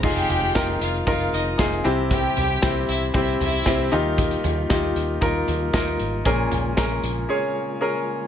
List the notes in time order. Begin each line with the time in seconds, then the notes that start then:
0.03 F1 D#3 G#3 C4 D#4 F4 G4 G#4 G5, kick, crash
0.17 closed hi-hat
0.29 F1, closed hi-hat, floor tom
0.55 F1 D#4 F4 A#4, kick, snare, closed hi-hat
0.81 F1 F4 F5, closed hi-hat
1.07 F1 D#4 F4 A#4 F5, kick, closed hi-hat
1.33 F1 D#4 D#5, closed hi-hat
1.58 F1 D#4 F4 G#4, kick, snare, closed hi-hat
1.73 closed hi-hat
1.84 C2 C3 E3 G3 C4 E4 G4, closed hi-hat
2.11 G4 G5, kick, closed hi-hat
2.36 C2, closed hi-hat, floor tom
2.62 C2 C4 E4 G4, kick, snare, closed hi-hat
2.88 C2 E4 E5, closed hi-hat
3.14 C2 C4 E4 G4 E5, kick, closed hi-hat
3.40 C2 E4 E5, closed hi-hat, floor tom
3.66 C2 C4 E4 G4, kick, snare, closed hi-hat
3.92 D#2 D#3 A#3 D#4 F4 G4, closed hi-hat
4.18 kick, closed hi-hat
4.31 closed hi-hat
4.44 D#2, closed hi-hat, floor tom
4.69 D#2 D#4 F4 G4, kick, snare, closed hi-hat
4.96 D#2, closed hi-hat
5.21 D#2 D#4 F4 A#4, kick, closed hi-hat
5.48 D#2, closed hi-hat, floor tom
5.73 D#2 D#4 F4 A#4, kick, snare, closed hi-hat
5.87 closed hi-hat
6.00 G#1, closed hi-hat
6.25 A#1 A#2 C#3 G#3 C#4 G#4 A#4, kick, closed hi-hat
6.52 A#1, closed hi-hat, floor tom
6.77 A#1 C#4 G#4 A#4, kick, snare, closed hi-hat
7.03 A#1, closed hi-hat
7.29 C#4 G#4 C#5
7.81 C#4 G#4 A#4